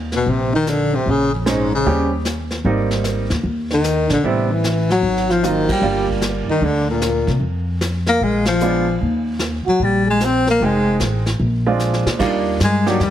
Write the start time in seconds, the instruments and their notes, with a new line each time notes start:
Already playing: upright bass D#2
0.12 trombone B3, snare
0.16 baritone saxophone B2
0.26 upright bass A#1, baritone saxophone C3, trombone C4, brush sweep
0.53 baritone saxophone D#3, trombone D#4
0.66 baritone saxophone D3, trombone D4, snare, hi-hat pedal
0.93 baritone saxophone C3, trombone C4
1.06 upright bass A#1, trombone C#4, brush sweep
1.10 baritone saxophone C#3
1.33 baritone saxophone F2, trombone F3
1.46 baritone saxophone G#2, upright piano G#3 C4 C#4 D#4, trombone G#3, snare, hi-hat pedal
1.73 baritone saxophone C#3, trombone C#4
1.86 upright bass D#2, upright piano G3 C4 C#4 G4, brush sweep
2.25 snare, hi-hat pedal
2.51 snare
2.64 upright bass G#1, upright piano G3 A#3 C4 D#4, brush sweep
2.91 snare
3.04 snare, hi-hat pedal
3.30 upright bass D#2, snare
3.43 upright bass D#2, brush sweep
3.70 baritone saxophone D#3, trombone D#4, snare
3.84 snare, hi-hat pedal
4.09 upright bass A#1, baritone saxophone D3, trombone D4, snare
4.23 upright bass A1, baritone saxophone C3, upright piano G3 B3 C4 E4, trombone C4, brush sweep
4.50 baritone saxophone E3, trombone E4
4.64 snare, hi-hat pedal
4.90 baritone saxophone F#3, trombone F#4, snare
5.02 upright bass G#1, brush sweep
5.17 snare
5.29 baritone saxophone F3, trombone F4, snare
5.43 baritone saxophone D#3, upright piano F#3 A#3 C4 F4, trombone D#4, hi-hat pedal
5.69 baritone saxophone G3, trombone G4, kick, ride
5.81 upright bass G1, upright piano G3 A#3 D4 F4, brush sweep
6.08 kick
6.22 snare, hi-hat pedal
6.48 baritone saxophone D#3, trombone D#4, muted upright bass stroke
6.61 upright bass D2, trombone D4, brush sweep
6.65 baritone saxophone D3
6.89 baritone saxophone A#2, trombone A#3
7.02 snare, hi-hat pedal
7.27 upright bass C3, kick, snare
7.40 upright bass F2, brush sweep
7.81 snare, hi-hat pedal
8.06 baritone saxophone A#3, trombone A#4, snare
8.21 upright bass A#1, baritone saxophone G#3, trombone G#4, brush sweep
8.46 baritone saxophone F3, trombone F4, snare, ride
8.60 upright piano G#3 B3 D4 F4, hi-hat pedal
9.00 upright bass D#2, brush sweep
9.39 snare, hi-hat pedal
9.65 baritone saxophone F#3, trombone F#4, muted upright bass stroke
9.80 upright bass A#1, trombone G4, brush sweep
9.84 baritone saxophone G3
10.06 trombone G#4
10.10 baritone saxophone G#3
10.20 trombone C5, snare, hi-hat pedal
10.25 baritone saxophone C4
10.47 baritone saxophone A#3, trombone A#4, snare
10.60 upright bass F1, upright piano G#3 C4 D#4 G5, trombone G#4, brush sweep
10.66 baritone saxophone G#3
11.00 upright bass A1, snare, hi-hat pedal
11.26 snare
11.39 upright bass A#1, brush sweep
11.67 upright piano G#3 C4 D4 F4
11.80 snare, hi-hat pedal
11.94 snare
12.06 upright bass A#2, snare
12.19 upright bass D#2, upright piano G3 A#3 D4 D#4 F4, brush sweep, kick, snare, crash
12.60 upright bass G2, baritone saxophone G#3, snare, hi-hat pedal
12.86 baritone saxophone F#3, upright piano G3 A#3 D4 D#4 G4, snare
12.99 upright bass F2, baritone saxophone G3, brush sweep, snare